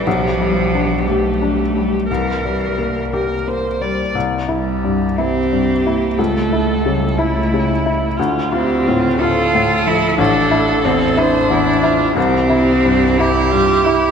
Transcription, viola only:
X:1
M:6/8
L:1/8
Q:3/8=60
K:Cmix
V:1 name="Viola"
G6 | B3 B c d | z3 G3 | A3 E3 |
F G F A3 | A3 c E F | G3 E F E |]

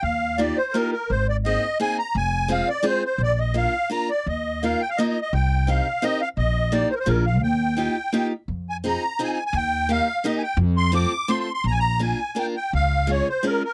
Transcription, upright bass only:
X:1
M:3/4
L:1/8
Q:1/4=170
K:Eb
V:1 name="Upright bass" clef=bass
E,,4 z2 | A,,,4 z2 | F,,,4 z2 | B,,,4 z2 |
E,,4 z2 | C,,4 z2 | B,,,4 B,,,2 | E,,4 z2 |
F,,4 z2 | E,,4 z2 | F,,4 z2 | B,,,4 z2 |
_D,,4 z2 |]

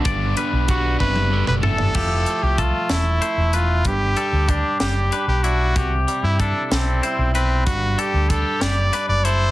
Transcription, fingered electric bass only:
X:1
M:6/8
L:1/16
Q:3/8=63
K:G
V:1 name="Fingered electric bass" clef=bass
G,,,2 z B,,,3 F,,,3 F,,,3 | =F,,,2 z C,,2 z E,,,2 z E,,,3 | G,,,2 z D,,2 z F,,,2 z B,,,3 | C,,2 z G,,2 z B,,,2 z B,,,3 |
G,,,2 z D,,2 z F,,,2 z F,,,3 |]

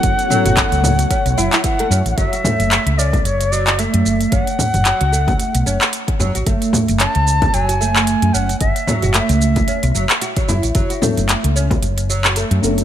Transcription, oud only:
X:1
M:4/4
L:1/16
Q:"Swing 16ths" 1/4=112
K:A
V:1 name="Oud"
z2 F, F A,4 C z E E E, A, C z | F, F A,4 C z3 F, F A,4 | C z3 F, F A,4 C z3 F, F | A,4 C z3 F, F A,4 C z |
z2 F, F A,4 C z F, z F F, E z | F, F A,4 C z3 F, F A,4 |]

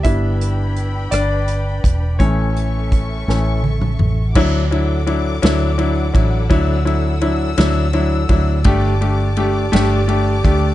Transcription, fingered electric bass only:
X:1
M:6/8
L:1/8
Q:3/8=56
K:D
V:1 name="Fingered electric bass" clef=bass
G,,,3 G,,,2 E,,, | A,,,3 A,,,2 A,,, | D,,3 D,,2 A,,, | D,,3 D,,2 D,, |
G,,,3 G,,,2 D,, |]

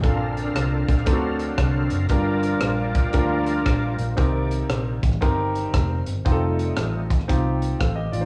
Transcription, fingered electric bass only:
X:1
M:4/4
L:1/8
Q:"Swing" 1/4=116
K:Bb
V:1 name="Fingered electric bass" clef=bass
B,,,2 C,, B,,, D,,2 C,, ^F,,, | G,,,2 B,,,2 D,,2 B,,, B,,, | C,,2 B,,, A,,, G,,,2 F,,, G,,, | F,,,2 A,,,2 C,,2 A,,, A,,, |]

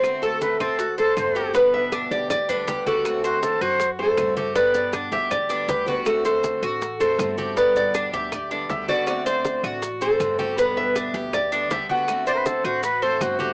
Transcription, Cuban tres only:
X:1
M:4/4
L:1/8
Q:1/4=159
K:G
V:1 name="Cuban tres"
C A2 C F c2 G | B,2 D G2 D G F- | F c2 F2 c2 G | B,2 D G2 D G F- |
F c2 F2 c2 G | B,2 D G2 D G F- | F c2 F2 c2 G | B,2 D G2 D G F- |
F c2 F2 c2 G |]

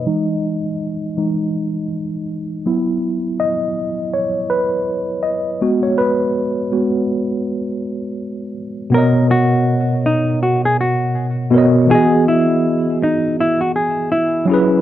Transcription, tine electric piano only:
X:1
M:4/4
L:1/16
Q:"Swing 16ths" 1/4=81
K:B
V:1 name="Tine electric piano"
d8- d2 z6 | z2 d4 c2 B4 d3 c | B12- B2 z2 | [B,,B,Acd]6 z8 [B,,B,Acd]2 |
[E,B,FGd]6 z8 [F,CEGB]2 |]
V:2 name="Tine electric piano"
[E,G,D]2 z4 [E,G,D]2 z6 [F,B,E]2- | [F,B,E]4 z8 z2 [G,B,F]2- | [G,B,F]4 [G,B,F]2 z8 z2 | z16 |
z16 |]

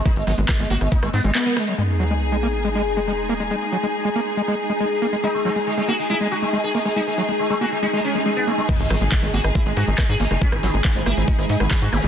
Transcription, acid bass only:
X:1
M:4/4
L:1/16
Q:1/4=139
K:G#m
V:1 name="Acid bass" clef=bass
G, z F, G, z G, A, z G, G, z G, B,2 G, F, | G, z F, G, z G, A, z G, G, z G, G, z A, G, | G, z F, G, z G, A, z G, G, z G, G, z A, G, | G, z F, G, z G, A, z G, G, z G, G, z A, G, |
G, z F, G, z G, A, z G, G, z G, G, z A, G, | G, z F, G, z G, A, z G, G, z G, G, z A, G, | G, z F, G, z G, A, z G, G, z G, G, z A, G, |]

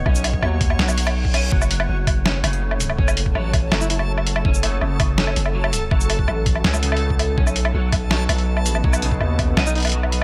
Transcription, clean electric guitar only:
X:1
M:4/4
L:1/8
Q:1/4=164
K:F#dor
V:1 name="Clean electric guitar" clef=bass
C z F, z F, z2 C | F,4 C C,3 | C z F, z F,4 | C C,3 C z F, z |
F,4 C C,3 | C z F, z F,4 | F, C,3 C z F, z |]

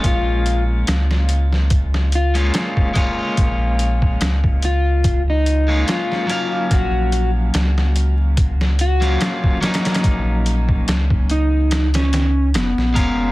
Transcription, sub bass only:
X:1
M:4/4
L:1/16
Q:"Swing 16ths" 1/4=72
K:Bbm
V:1 name="Sub bass" clef=bass
B,,,4 D,,8 z4 | B,,,4 D,,8 z4 | B,,,4 D,,8 z4 | ^A,,,4 ^C,,8 ^E,,, A,,, E,,,2 |]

